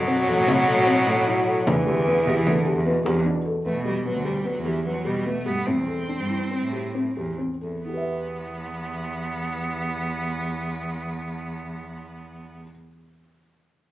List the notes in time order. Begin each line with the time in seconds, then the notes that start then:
Already playing: B2 F#3
0.07 C4
0.27 E2 A4
0.38 A2
0.47 C4, frame drum
0.67 A4
0.77 A2
0.87 C4
1.06 A2 A4, frame drum
1.27 E4
1.47 A4
1.66 E2 E3 D4, frame drum
1.86 D2 G4
2.07 B3
2.26 B2 G4, frame drum
2.36 E3
2.46 D3 B3, frame drum
2.65 G4
2.76 E2
2.85 B2 B3
3.05 E2 C3 G4, frame drum
3.25 B2 D4
3.45 A4
3.65 E2 A3 B3
3.75 B2
3.85 G3 G4
4.04 F#3 B3
4.15 D2
4.25 G3 G4
4.44 F#3 B3
4.56 E2
4.65 E3 G4
4.84 F#3 B3
5.05 B2 G3 G4
5.25 A3 B3
5.45 G2 B3 G4
5.66 A2 C4
5.77 E2
5.87 A4
6.08 D4
6.19 G2
6.30 E4
6.51 C4
6.62 A2
6.73 G4
6.94 C4
7.17 E2 G4
7.38 C4
7.61 E2 A4
7.84 E2 B3 E4
7.89 G4
7.93 B4
7.97 E5